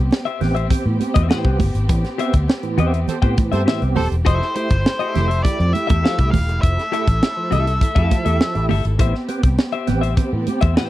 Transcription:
Already playing: string section B3 C4 G4
0.11 snare, muted conga
0.25 clean electric guitar G4 C5 E5, closed hi-hat
0.41 fingered electric bass A1, tonewheel organ B3 C4 G4, snare, open hi-hat, low conga
0.55 clean electric guitar G4 C5 E5, closed hi-hat
0.70 tonewheel organ C4 G4, muted fingered electric bass stroke, kick, closed hi-hat, muted conga, low conga
0.86 fingered electric bass A2, tonewheel organ A2 E3
1.00 tonewheel organ C4 G4, closed hi-hat, high conga
1.14 fingered electric bass E2, clean electric guitar G4 C5 E5, kick, closed hi-hat, high conga
1.29 tonewheel organ A2 E3, clean electric guitar G4 C5 G5, snare, muted conga
1.45 fingered electric bass C2, tonewheel organ B3 C4 G4, kick
1.59 fingered electric bass G1, tonewheel organ C4 G4, kick, open hi-hat, high conga, low conga
1.75 fingered electric bass G#1, closed hi-hat
1.89 fingered electric bass A1, tonewheel organ A2 E3, kick, closed hi-hat, muted conga
2.04 tonewheel organ C4 G4, snare, closed hi-hat
2.18 tonewheel organ B3 C4 G4, clean electric guitar G4 C5 E5, closed hi-hat
2.33 fingered electric bass D2, kick, closed hi-hat
2.48 tonewheel organ C4 G4, snare, muted conga
2.63 tonewheel organ A2 E3, closed hi-hat
2.78 fingered electric bass E2, tonewheel organ B3 C4 G4, clean electric guitar G4 C5 E5, closed hi-hat, low conga
2.94 closed hi-hat
3.08 horn section G4 A4 C5, muted fingered electric bass stroke, closed hi-hat, muted conga, low conga
3.22 fingered electric bass A2, tonewheel organ B3 C4 G4, clean electric guitar G4 C5 G5, kick, closed hi-hat
3.38 tonewheel organ A2 E3, kick, closed hi-hat, muted conga, high conga
3.52 fingered electric bass G2, tonewheel organ B3 C4 G4, horn section G4 A4 C5, clean electric guitar G4 C5 E5, closed hi-hat, high conga
3.66 tonewheel organ A2 E3, clean electric guitar G4 C5 E5, snare
3.81 fingered electric bass C2, tonewheel organ B3 C4 G4, closed hi-hat
3.96 fingered electric bass D#1, tonewheel organ C4 G4, horn section G4 A4 C5, lead electric guitar A4, open hi-hat, high conga, low conga
4.12 fingered electric bass E1, closed hi-hat
4.25 fingered electric bass F1, tonewheel organ F3, string section A3 E4 G4, clean electric guitar G4 A4 E5, lead electric guitar C5, kick, closed hi-hat
4.42 snare
4.56 tonewheel organ A3 E4 G4, lead electric guitar C5, closed hi-hat, muted conga
4.70 fingered electric bass G1, tonewheel organ E4 G4, kick, closed hi-hat
4.85 snare, muted conga
4.99 clean electric guitar G4 A4 E5, closed hi-hat
5.14 fingered electric bass F1, tonewheel organ A3 E4 G4, snare, closed hi-hat, low conga
5.28 clean electric guitar G4 A4 E5, closed hi-hat
5.44 tonewheel organ E4 G4, lead electric guitar D5, muted fingered electric bass stroke, kick, closed hi-hat, muted conga, low conga
5.59 fingered electric bass F2, tonewheel organ F3, closed hi-hat
5.73 tonewheel organ E4 G4, lead electric guitar E5, closed hi-hat, high conga
5.87 fingered electric bass E2, clean electric guitar G4 A4 E5, kick, closed hi-hat, high conga
6.03 tonewheel organ F3, clean electric guitar G4 A4 F5, snare
6.18 fingered electric bass C2, tonewheel organ A3 E4 G4, kick, closed hi-hat
6.31 fingered electric bass D#1, tonewheel organ E4 G4, lead electric guitar F5, kick, open hi-hat, muted conga, high conga, low conga
6.48 fingered electric bass E1, closed hi-hat
6.62 fingered electric bass F1, tonewheel organ F3, string section A4, lead electric guitar E5, kick, closed hi-hat
6.78 tonewheel organ E4 G4, snare, closed hi-hat
6.92 tonewheel organ A3 E4 G4, clean electric guitar G4 A4 E5, closed hi-hat, muted conga
7.07 fingered electric bass A1, kick, closed hi-hat
7.22 tonewheel organ E4 G4, snare
7.37 tonewheel organ F3
7.51 fingered electric bass C2, tonewheel organ A3 E4 G4, clean electric guitar G4 A4 E5, closed hi-hat, muted conga, low conga
7.67 closed hi-hat
7.81 kick, closed hi-hat, low conga
7.95 fingered electric bass F2, tonewheel organ A3 E4 G4, clean electric guitar G4 A4 F5, kick, closed hi-hat
8.11 tonewheel organ F3, kick, closed hi-hat, muted conga, high conga
8.25 fingered electric bass E2, tonewheel organ A3 E4 G4, clean electric guitar G4 A4 E5, closed hi-hat, high conga
8.40 tonewheel organ F3, snare
8.55 fingered electric bass A1, tonewheel organ A3 E4 G4, closed hi-hat
8.69 fingered electric bass G1, tonewheel organ E4 G4, clean electric guitar G4 A4 E5, open hi-hat, high conga, low conga
8.85 fingered electric bass G#1, closed hi-hat
8.99 fingered electric bass A1, tonewheel organ A2 E3, string section B3 C4 G4, clean electric guitar G4 C5 E5, kick, closed hi-hat
9.15 snare
9.28 tonewheel organ B3 C4 G4, closed hi-hat, muted conga
9.43 fingered electric bass C2, tonewheel organ G4, kick, closed hi-hat
9.58 snare, muted conga
9.72 clean electric guitar G4 C5 E5, closed hi-hat
9.87 fingered electric bass A1, tonewheel organ B3 C4 G4, snare, closed hi-hat, muted conga, low conga
10.01 clean electric guitar G4 C5 E5, closed hi-hat
10.17 tonewheel organ C4 G4, muted fingered electric bass stroke, kick, closed hi-hat, low conga
10.32 tonewheel organ A2 E3, fingered electric bass A2
10.46 tonewheel organ C4 G4, closed hi-hat, high conga
10.61 fingered electric bass E2, clean electric guitar G4 C5 E5, kick, closed hi-hat, high conga
10.76 tonewheel organ A2 E3, clean electric guitar G4 C5 G5, snare

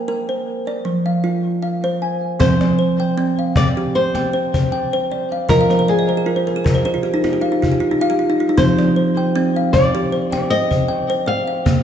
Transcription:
Already playing: kalimba A#3
0.08 kalimba A#4
0.29 kalimba C5
0.67 kalimba D5
0.85 kalimba F3
1.06 kalimba F5
1.24 kalimba F4
1.62 kalimba F5
1.84 kalimba C5
2.02 kalimba G#5
2.40 kalimba F3 C4, nylon-string guitar C5, cajon bass
2.61 kalimba D5, cajon slap
2.79 kalimba C5
3.00 kalimba G5
3.18 kalimba C4
3.38 kalimba F5, cajon slap
3.56 nylon-string guitar D5, kalimba D5, cajon bass
3.77 kalimba G4
3.94 kalimba C5, nylon-string guitar C5, cajon slap
4.15 kalimba G5, cajon slap
4.33 kalimba C5
4.54 kalimba C5, cajon bass
4.72 kalimba G5
4.93 kalimba C5
5.12 kalimba D5
5.32 kalimba F5
5.49 kalimba F3 F4 D#5, nylon-string guitar A#4, cajon bass
5.61 kalimba F5
5.70 kalimba C5, cajon slap
5.79 kalimba C5
5.88 nylon-string guitar G#4, kalimba D5
5.99 kalimba D#5
6.09 kalimba C5
6.17 kalimba G#4
6.26 kalimba F4 A#4
6.36 kalimba C5
6.47 kalimba A#4, cajon slap
6.56 kalimba G#4
6.64 kalimba A#4, cajon bass
6.75 kalimba C5
6.85 kalimba G#4 C5
6.94 kalimba F4
7.03 kalimba G4, cajon slap
7.14 kalimba D#4
7.24 kalimba F4, cajon slap
7.33 kalimba G4
7.41 kalimba F4 F5
7.52 kalimba D#4
7.62 kalimba F4, cajon bass
7.72 kalimba G4
7.80 kalimba F4
7.91 kalimba D#4
8.01 kalimba F4 F5
8.10 kalimba G4
8.19 kalimba F4
8.30 kalimba D#4
8.40 kalimba F4
8.49 kalimba D#4
8.58 kalimba F3 C4, nylon-string guitar C5, cajon bass
8.78 kalimba D5, cajon slap
8.96 kalimba C5
9.17 kalimba G5
9.36 kalimba C4
9.56 kalimba F5, cajon slap
9.73 nylon-string guitar D5, kalimba D5, cajon bass
9.95 kalimba G4
10.12 kalimba C5, cajon slap
10.32 kalimba G5, cajon slap
10.50 kalimba C5, nylon-string guitar D#5
10.71 kalimba C5, cajon bass
10.88 kalimba G5
11.10 kalimba C5
11.26 kalimba D5, nylon-string guitar F5
11.47 kalimba F5
11.66 kalimba A#3, cajon bass

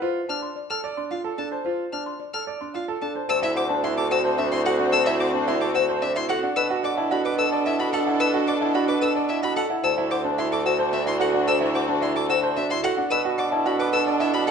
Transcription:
0.02 grand piano F4, marimba C5
0.29 grand piano D4, marimba A5, violin F6
0.42 marimba C6
0.56 marimba D5
0.70 grand piano A4, violin F6
0.84 grand piano D5
0.97 grand piano D4, marimba C6
1.11 grand piano F4, violin F5, marimba F5
1.24 grand piano A4
1.38 grand piano D4, marimba A4, violin A5
1.51 grand piano C5, marimba A5
1.65 grand piano F4, marimba C5
1.92 grand piano D4, marimba A5, violin F6
2.06 marimba C6
2.20 marimba D5
2.33 grand piano A4, violin F6
2.47 grand piano D5
2.61 grand piano D4, marimba C6
2.74 grand piano F4, marimba F5, violin F5
2.88 grand piano A4
3.02 grand piano D4, marimba A4, violin A5
3.15 grand piano C5, marimba A5
3.29 bassoon D2, string section C4 F#4, clarinet F#4, grand piano A4, marimba C5, violin E6
3.43 grand piano E4, violin E5
3.56 grand piano C5, marimba F#5, violin D6
3.69 grand piano D4, marimba A5
3.84 grand piano E4, marimba D5, violin C6
3.97 grand piano A4, violin D6
4.11 grand piano F#4, marimba C5, violin E6
4.24 grand piano C5, marimba A5
4.38 grand piano D4, marimba E5, violin E5
4.51 grand piano E4, violin C6
4.65 grand piano F#4, marimba A4, violin F#5
4.79 grand piano D4, marimba F#5
4.92 grand piano A4, marimba C5, violin E6
5.06 grand piano E4, violin E5
5.20 grand piano C5, marimba F#5, violin D6
5.34 grand piano D4, marimba A5
5.48 grand piano E4, marimba D5, violin C6
5.61 grand piano A4, violin D6
5.74 grand piano F#4, marimba C5, violin E6
5.89 grand piano C5, marimba A5
6.02 grand piano D4, marimba E5, violin E5
6.16 grand piano E4, violin C6
6.29 grand piano F#4, marimba A4, violin F#5
6.43 grand piano D4, marimba F#5
6.56 bassoon B2, clarinet D4, string section D4 A4, marimba B4, grand piano B4, violin E6
6.70 grand piano F#4
6.83 grand piano D5, marimba F#5, violin D6
6.97 grand piano E4, marimba A5
7.10 grand piano F#4, marimba D5, violin B5
7.25 grand piano B4, violin D6
7.38 grand piano A4, marimba B4, violin E6
7.52 grand piano D5, marimba A5
7.66 grand piano E4, violin E5, marimba E5
7.79 grand piano F#4, violin B5
7.93 marimba A4, grand piano A4, violin F#5
8.07 grand piano E4, marimba F#5
8.20 marimba B4, grand piano B4, violin E6
8.34 grand piano F#4
8.47 grand piano D5, marimba F#5, violin D6
8.61 grand piano E4, marimba A5
8.74 grand piano F#4, marimba D5, violin B5
8.88 grand piano B4, violin D6
9.01 grand piano A4, marimba B4, violin E6
9.15 grand piano D5, marimba A5
9.29 grand piano E4, violin E5, marimba E5
9.43 grand piano F#4, violin B5
9.56 marimba A4, grand piano A4, violin F#5
9.70 grand piano E4, marimba F#5
9.83 bassoon D2, string section D4 F#4, clarinet F#4, grand piano A4, marimba C5, violin E6
9.98 grand piano E4
10.11 grand piano C5, marimba F#5, violin D6
10.24 grand piano D4, marimba A5
10.38 grand piano E4, marimba D5, violin C6
10.52 grand piano A4, violin D6
10.65 grand piano F#4, marimba C5, violin E6
10.79 grand piano C5, marimba A5
10.93 grand piano D4, violin E5, marimba E5
11.06 grand piano E4, violin C6
11.20 grand piano F#4, marimba A4, violin F#5
11.34 grand piano D4, marimba F#5
11.47 grand piano A4, marimba C5, violin E6
11.61 grand piano E4
11.75 grand piano C5, marimba F#5, violin D6
11.89 grand piano D4, marimba A5
12.02 grand piano E4, marimba D5, violin C6
12.16 grand piano A4, violin D6
12.29 grand piano F#4, marimba C5, violin E6
12.42 grand piano C5, marimba A5
12.56 grand piano D4, marimba E5, violin E5
12.70 grand piano E4, violin C6
12.83 grand piano F#4, marimba A4, violin F#5
12.97 grand piano D4, marimba F#5
13.11 bassoon B2, clarinet D4, string section D4 A4, marimba B4, grand piano B4, violin E6
13.25 grand piano F#4
13.38 grand piano D5, marimba F#5, violin D6
13.52 grand piano E4, marimba A5
13.65 grand piano F#4, marimba D5, violin B5
13.79 grand piano B4, violin D6
13.93 grand piano A4, marimba B4, violin E6
14.07 grand piano D5, marimba A5
14.20 grand piano E4, violin E5, marimba E5
14.34 grand piano F#4, violin B5
14.47 grand piano A4, violin F#5

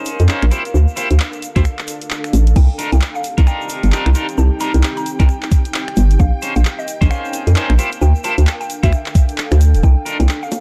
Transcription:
Already playing: clean electric guitar C#4 D#4 G#4 C5, ambient pad A#4 F5
0.05 open hi-hat, shaker
0.19 fm bass F2, closed hi-hat, shaker
0.28 clean electric guitar C#4 D#4 G#4 C5, clap, shaker
0.42 fm bass A#1, finger snap, closed hi-hat
0.51 ambient pad D4, clean electric guitar E4 F4 G4 C5, open hi-hat, shaker
0.65 closed hi-hat, shaker
0.74 fm bass D2, shaker
0.88 ambient pad A4, shaker
0.96 clean electric guitar E4 F4 G4 C5, open hi-hat, shaker
1.10 fm bass D2, closed hi-hat, shaker
1.20 clap, shaker
1.33 closed hi-hat, shaker
1.42 open hi-hat, shaker
1.56 fm bass D2, clean electric guitar E4 F4 G4 C5, finger snap, kick, closed hi-hat, shaker
1.65 finger snap, closed hi-hat, shaker
1.78 clap, shaker
1.88 open hi-hat, shaker
2.02 closed hi-hat, shaker
2.11 clap, shaker
2.24 finger snap, closed hi-hat, shaker
2.33 fm bass A1, open hi-hat, shaker
2.47 closed hi-hat, shaker
2.56 fm bass C2, ambient pad C4, synth pluck G5, string machine G5, kick, crash, shaker
2.70 ambient pad D#4 G4
2.78 clean electric guitar D4 D#4 F4 A#4, open hi-hat, shaker
2.92 fm bass C2, synth pluck G5, closed hi-hat, shaker
3.01 clap, shaker
3.15 synth pluck F5, shaker
3.24 open hi-hat, shaker
3.38 fm bass C2, clean electric guitar D4 D#4 F4 A#4, kick, closed hi-hat, shaker
3.47 synth pluck G5, finger snap, shaker
3.61 shaker
3.69 open hi-hat, shaker
3.83 fm bass G1, closed hi-hat, shaker
3.92 clean electric guitar D4 D#4 F4 A#4, clap, shaker
4.06 fm bass C2, finger snap, closed hi-hat
4.15 clean electric guitar D4 D#4 F4 A#4, open hi-hat, shaker
4.29 closed hi-hat, shaker
4.38 fm bass C2, synth pluck A5, shaker
4.60 clean electric guitar D4 D#4 F4 A#4, synth pluck A#5, open hi-hat, shaker
4.74 fm bass C2, closed hi-hat, shaker
4.83 clap, shaker
4.97 synth pluck A#5, closed hi-hat, shaker
5.06 open hi-hat, shaker
5.19 fm bass C2, clean electric guitar D4 D#4 F4 A#4, synth pluck G5, finger snap, kick, closed hi-hat, shaker
5.29 finger snap, shaker
5.42 clap, shaker
5.51 kick, open hi-hat, shaker
5.65 closed hi-hat, shaker
5.74 clap, shaker
5.88 finger snap, closed hi-hat
5.97 fm bass G1, open hi-hat, shaker
6.10 closed hi-hat, shaker
6.19 fm bass A#1, ambient pad A#4, synth pluck F5, kick, shaker
6.42 clean electric guitar C#4 D#4 G#4 C5, open hi-hat, shaker
6.55 fm bass A#1, ambient pad F5, synth pluck F5, closed hi-hat, shaker
6.65 clap, shaker
6.79 synth pluck D#5, shaker
6.88 open hi-hat, shaker
7.01 fm bass A#1, clean electric guitar C#4 D#4 G#4 C5, kick, closed hi-hat, shaker
7.10 synth pluck F5, finger snap, shaker
7.25 shaker
7.33 open hi-hat, shaker
7.47 fm bass F2, closed hi-hat, shaker
7.55 clean electric guitar C#4 D#4 G#4 C5, clap, shaker
7.70 fm bass A#1, finger snap, closed hi-hat
7.78 ambient pad D4, clean electric guitar E4 F4 G4 C5, open hi-hat, shaker
7.92 closed hi-hat, shaker
8.01 fm bass D2, synth pluck G5, shaker
8.16 ambient pad A4, shaker
8.24 clean electric guitar E4 F4 G4 C5, synth pluck A5, open hi-hat, shaker
8.38 fm bass D2, closed hi-hat, shaker
8.47 clap, shaker
8.61 synth pluck G5, closed hi-hat, shaker
8.70 open hi-hat, shaker
8.83 fm bass D2, clean electric guitar E4 F4 G4 C5, synth pluck E5, finger snap, kick, closed hi-hat, shaker
8.92 finger snap, shaker
9.06 clap, shaker
9.15 kick, open hi-hat, shaker
9.29 closed hi-hat, shaker
9.38 clap, shaker
9.51 fm bass D2, finger snap, closed hi-hat, shaker
9.61 open hi-hat, shaker
9.74 fm bass D1, closed hi-hat, shaker
9.83 fm bass C2, ambient pad C4, string machine F5, synth pluck G5, kick, shaker
9.99 ambient pad D#4
10.05 clean electric guitar D4 D#4 F4 A#4, open hi-hat, shaker
10.13 ambient pad G4
10.20 fm bass C2, synth pluck G5, closed hi-hat, high bongo, shaker
10.29 clap, shaker
10.43 synth pluck F5, shaker
10.52 open hi-hat, high bongo, shaker

